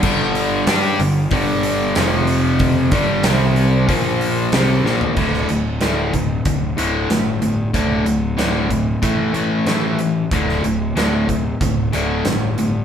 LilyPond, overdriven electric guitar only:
\new Staff \with { instrumentName = "Overdriven electric guitar" } { \clef bass \time 4/4 \key d \minor \tempo 4 = 93 <g, d g>4 <g d' g'>8 <g, d>8 <g, d g>4 <f, c f>4~ | <f, c f>8 <g, d g>8 <c g c'>4 <bes, f bes>4 <c g c'>8 <bes, f bes>8 | <d, a, d>8 <d, a,>8 <d, a, d>8 <d, a,>8 <d, a,>8 <d, a, d>8 <d, a,>8 <d, a,>8 | <d, a, d>8 <d, a,>8 <d, a, d>8 <d, a,>8 <a, e a>8 <a, e a>8 <a, e a>8 <a, e>8 |
<d, a, d>8 <d, a,>8 <d, a, d>8 <d, a,>8 <d, a,>8 <d, a, d>8 <d, a,>8 <d, a,>8 | }